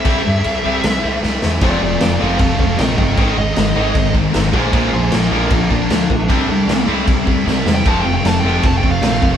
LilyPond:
<<
  \new Staff \with { instrumentName = "Lead electric guitar" } { \time 4/4 \key c \mixolydian \tempo 4 = 154 e''2. r4 | <f' d''>8 <f' d''>8 <f' d''>8 <a' f''>8 <a' f''>8 <a' f''>8 <ees'' g''>8 <ees'' g''>8 | <bes' g''>8 ees''2 r4 <aes' c''>8 | <aes' c''>8 <aes' c''>8 <d' bes'>8 <d' bes'>8 <d' bes'>8 d'4.~ |
d'4. r4. \tuplet 3/2 { r4 g''8 } | \tuplet 3/2 { a''8 g''8 g''8 a''8 g''8 g''8 a''8 g''8 f''8~ } f''8 r8 | }
  \new Staff \with { instrumentName = "Distorted electric guitar" } { \time 4/4 \key c \mixolydian <c g c' e'>2~ <c g c' e'>8 <c g c' e'>8 <c g c' e'>4 | <f a c' f'>4. <f a c' f'>4. <f a c' f'>4 | <aes, ees aes c' ees'>4. <aes, ees aes c' ees'>4. <aes, ees aes c' ees'>8 <bes, d f bes f'>8~ | <bes, d f bes f'>4 <bes, d f bes f'>4. <bes, d f bes f'>4 r8 |
<c g c' e'>4. <c g c' e'>4. <c g c' e'>4 | <f a c' f'>4. <f a c' f'>4. <f a c' f'>4 | }
  \new Staff \with { instrumentName = "Distorted electric guitar" } { \clef bass \time 4/4 \key c \mixolydian <c g c'>8 r4 <c g c'>8 r2 | <f, c f>8 <f, c>8 <f, c>8 <f, c f>8 <f, c>8 <f, c>8 <f, c>8 <f, c>8 | <aes, ees aes>8 <aes, ees>8 <aes, ees>8 <aes, ees aes>8 <aes, ees>8 <aes, ees>8 <aes, ees>8 <bes, f bes>8 | <bes, f bes>8 <bes, f>8 <bes, f>8 <bes, f bes>8 <bes, f>8 <bes, f>8 <bes, f>8 <bes, f>8 |
<c g c'>8 <c g>8 <c g>8 <c g c'>8 <c g>8 <c g>8 <c g>8 <c g>8 | <f, c f>8 <f, c>8 <f, c>8 <f, c f>8 <f, c>8 <f, c>8 <f, c>8 <f, c>8 | }
  \new Staff \with { instrumentName = "Distorted electric guitar" } { \clef bass \time 4/4 \key c \mixolydian <c g c'>8 r4 <c g c'>8 r2 | <f, c f>8 <f, c>8 <f, c>8 <f, c f>8 <f, c>8 <f, c>8 <f, c>8 <f, c>8 | <aes, ees aes>8 <aes, ees>8 <aes, ees>8 <aes, ees aes>8 <aes, ees>8 <aes, ees>8 <aes, ees>8 <bes, f bes>8 | <bes, f bes>8 <bes, f>8 <bes, f>8 <bes, f bes>8 <bes, f>8 <bes, f>8 <bes, f>8 <bes, f>8 |
<c g c'>8 <c g>8 <c g>8 <c g c'>8 <c g>8 <c g>8 <c g>8 <c g>8 | <f, c f>8 <f, c>8 <f, c>8 <f, c f>8 <f, c>8 <f, c>8 <f, c>8 <f, c>8 | }
  \new Staff \with { instrumentName = "Picked electric bass" } { \clef bass \time 4/4 \key c \mixolydian c,8 g,8 c,8 c,8 c,8 c,8 c,8 e,8 | f,,8 f,,8 f,,8 f,,8 f,,8 f,,8 bes,,8 g,,8 | aes,,8 aes,,8 aes,,8 aes,,8 aes,,4 aes,,8 bes,,8 | bes,,8 bes,,8 bes,,8 bes,,8 bes,,8 bes,,8 d,8 bes,,8 |
c,8 c,8 c,8 c,8 c,4 c,8 e,8 | f,,8 f,,8 f,,8 f,,8 f,,8 f,,8 bes,,8 f,,8 | }
  \new DrumStaff \with { instrumentName = "Drums" } \drummode { \time 4/4 <cymc bd>4 cymc4 <cymc sn>4 sn8 sn8 | <cymc bd>4 <cymc sn>4 <cymc bd>8 bd8 <cymc sn>8 bd8 | <cymc bd>4 <cymc sn>4 <cymc bd>8 bd8 <cymc sn>8 bd8 | <cymc bd>4 <cymc sn>4 <cymc bd>8 bd8 <cymc sn>8 bd8 |
<cymc bd>4 <cymc sn>4 <cymc bd>8 bd8 sn8 sn8 | <cymc bd>4 <cymc sn>4 <cymc bd>8 bd8 <cymc sn>8 bd8 | }
>>